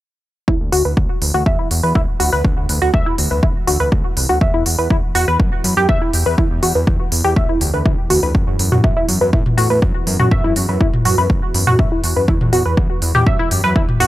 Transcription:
0.48 D2 E2 E4, kick
0.61 D2
0.72 D2 F#4, open hi-hat
0.85 D2 B4
0.97 D2, kick
1.21 D2, open hi-hat
1.34 D2 F#4
1.46 E2 E5, kick
1.59 E4
1.71 E2, open hi-hat
1.83 E2 B4
1.95 D2 E4, kick
2.20 D2 F#4, open hi-hat
2.33 D2 B4
2.45 D2, kick
2.57 D2
2.69 D2, open hi-hat
2.82 D2 F#4
2.94 D2 E5, kick
3.06 E4
3.18 D2, open hi-hat
3.31 D2 B4
3.43 D1 E4, kick
3.67 D2 F#4, open hi-hat
3.80 D2 B4
3.92 D2, kick
4.17 C2, open hi-hat
4.29 D2 F#4
4.41 E2 E5, kick
4.54 E2 E4
4.66 E2, open hi-hat
4.79 E2 B4
4.90 E2 E4, kick
5.15 E2 F#4, open hi-hat
5.28 E2 B4
5.40 F#2, kick
5.64 F#2, open hi-hat
5.77 F#2 G4
5.89 E2 E5, kick
6.02 E4
6.13 E2, open hi-hat
6.26 E2 B4
6.38 E2 E4, kick
6.51 E2
6.63 E2 F#4, open hi-hat
6.75 E2 B4
6.87 E2, kick
7.12 E2, open hi-hat
7.24 E2 G4
7.36 D2 E5, kick
7.49 E4
7.61 D2, open hi-hat
7.74 D2 B4
7.85 D2 E4, kick
8.10 D2 F#4, open hi-hat
8.23 D2 B4
8.35 F#2, kick
8.47 F#2
8.59 F#2, open hi-hat
8.72 F#2 F#4, mid tom
8.84 F#2 E5, kick
8.97 E4
9.08 F#2, open hi-hat
9.21 F#2 B4
9.33 A2 E4, kick
9.46 mid tom
9.58 A2 F#4, open hi-hat
9.70 A2 B4
9.82 F#2, kick
10.07 F#2, open hi-hat
10.20 F#2 F#4, mid tom
10.31 F#2 E5, kick
10.44 F#2 E4
10.56 F#2, open hi-hat
10.69 F#2 B4
10.81 F#2 E4, kick
10.93 mid tom
11.05 F#2 F#4, open hi-hat
11.18 F#2 B4
11.30 F#1, kick
11.54 F#2, open hi-hat
11.67 F#2 F#4, mid tom
11.79 F#2 E5, kick
11.92 E4
12.04 E2, open hi-hat
12.16 F#2 B4
12.28 E2 E4, kick
12.41 E2, mid tom
12.53 E2 F#4, open hi-hat
12.66 E2 B4
12.77 E2, kick
13.02 E2, open hi-hat
13.15 E2 G4, mid tom
13.27 F#2 E5, kick
13.39 E4
13.51 F#2, open hi-hat
13.64 F#2 B4
13.76 E2 E4, kick
13.89 mid tom
14.00 E2 F#4, open hi-hat

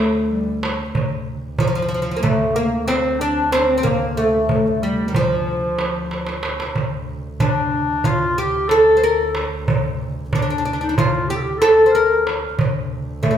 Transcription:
Already playing: D2 A3
0.28 G3
0.63 darbuka tek
0.95 D2, darbuka dum
1.58 F3, darbuka dum
1.68 F3
1.75 F3
1.82 F3
1.89 F3, darbuka ka
1.94 F3
2.02 F3
2.11 F3
2.17 A#3
2.23 A3, darbuka dum
2.55 A#3, darbuka ka
2.86 C4, darbuka tek
3.19 D4
3.52 C4, darbuka tek
3.58 D4
3.67 C4
3.78 C4
3.83 A#3, darbuka dum
4.17 A3
4.49 darbuka dum
4.66 A3
4.82 G3, darbuka ka
4.98 darbuka ka
5.08 D#3
5.14 F3, darbuka dum
5.47 darbuka ka
5.79 darbuka tek
6.11 darbuka tek
6.27 darbuka ka
6.43 darbuka tek
6.60 darbuka ka
6.75 D2, darbuka dum
7.40 D4, darbuka dum
7.73 darbuka ka
8.04 F4, darbuka dum
8.37 G4, darbuka ka
8.69 A4, darbuka tek
8.97 C5
9.04 A#4
9.35 darbuka tek
9.68 darbuka dum
10.33 D4, darbuka dum
10.42 D4
10.50 D4
10.58 D4
10.65 D4, darbuka ka
10.73 D4
10.81 D4 D#4
10.89 D4
10.96 F4, darbuka dum
11.28 G4, darbuka ka
11.36 A4
11.42 G4
11.58 A4, darbuka tek
11.86 C5
11.91 A#4
11.95 A#4
12.27 darbuka tek
12.59 D2, darbuka dum
13.22 A3, darbuka dum
13.31 A3

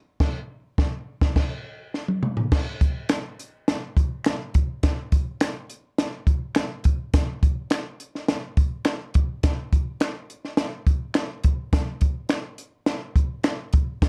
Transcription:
0.20 kick, snare, crash
0.78 kick, snare
1.21 kick, snare
1.36 kick, snare, crash
1.94 snare
2.08 high tom
2.23 mid tom
2.37 floor tom
2.52 kick, snare, crash
2.81 kick, closed hi-hat
3.09 finger snap, snare, closed hi-hat
3.39 closed hi-hat
3.68 snare, closed hi-hat
3.97 kick, closed hi-hat
4.25 finger snap, snare, closed hi-hat
4.54 kick, closed hi-hat
4.83 kick, snare, closed hi-hat
5.12 kick, closed hi-hat
5.41 finger snap, snare, closed hi-hat
5.70 closed hi-hat
5.98 snare, closed hi-hat
6.27 kick, closed hi-hat
6.55 finger snap, snare, closed hi-hat
6.84 kick, closed hi-hat
7.14 kick, snare, closed hi-hat
7.43 kick, closed hi-hat
7.70 finger snap, snare, closed hi-hat
8.00 closed hi-hat
8.15 snare
8.28 snare, closed hi-hat
8.57 kick, closed hi-hat
8.85 finger snap, snare, closed hi-hat
9.14 kick, closed hi-hat
9.43 kick, snare, closed hi-hat
9.73 kick, closed hi-hat
10.00 finger snap, snare, closed hi-hat
10.30 closed hi-hat
10.45 snare
10.57 snare, closed hi-hat
10.87 kick, closed hi-hat
11.14 finger snap, snare, closed hi-hat
11.44 kick, closed hi-hat
11.73 kick, snare, closed hi-hat
12.01 kick, closed hi-hat
12.29 finger snap, snare, closed hi-hat
12.58 closed hi-hat
12.86 snare, closed hi-hat
13.16 kick, closed hi-hat
13.44 finger snap, snare, closed hi-hat
13.73 kick, closed hi-hat
14.02 kick, snare, closed hi-hat

